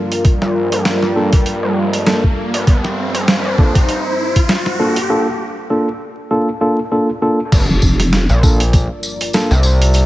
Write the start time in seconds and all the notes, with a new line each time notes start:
Already playing: G3 F4 A#4 D5, riser
0.12 closed hi-hat
0.25 kick, closed hi-hat
0.42 A#1, snare
0.72 F1, closed hi-hat
0.85 snare, closed hi-hat
1.03 G2, snare
1.16 A#3 D4 F4 A4
1.33 kick, closed hi-hat
1.46 closed hi-hat
1.63 F1
1.93 closed hi-hat
2.07 A#3 D4 F4 A4, snare, closed hi-hat
2.24 kick
2.54 G1, closed hi-hat
2.67 C5, kick, closed hi-hat
2.85 snare
3.15 closed hi-hat
3.28 snare, closed hi-hat
3.45 G1
3.58 A#3 D4 F4 A4, kick
3.75 kick, closed hi-hat
3.89 closed hi-hat
4.36 kick, closed hi-hat
4.49 snare, closed hi-hat
4.66 snare
4.79 A#3 D4 F4 A4
4.96 closed hi-hat
5.10 A#3 D4 F4 A4
5.70 A#3 D4 F4 A4
6.31 A#3 D4 F4 A4
6.61 A#3 D4 F4 A4
6.92 A#3 D4 F4 A4
7.22 A#3 D4 F4 A4
7.52 G1 G3 F4 A#4 D5, kick, closed hi-hat, crash, tambourine, impact
7.69 F1
7.82 kick, tambourine
8.00 snare, closed hi-hat, tambourine
8.13 snare, closed hi-hat, tambourine
8.29 A#1, tambourine
8.43 A#3 D4 F4 A4, kick, tambourine
8.60 closed hi-hat, tambourine
8.73 kick, closed hi-hat, tambourine
9.03 tambourine
9.21 closed hi-hat, tambourine
9.33 A#3 D4 F4 A4, snare, closed hi-hat, tambourine
9.51 C2, tambourine
9.63 tambourine
9.82 closed hi-hat, tambourine
9.94 closed hi-hat, tambourine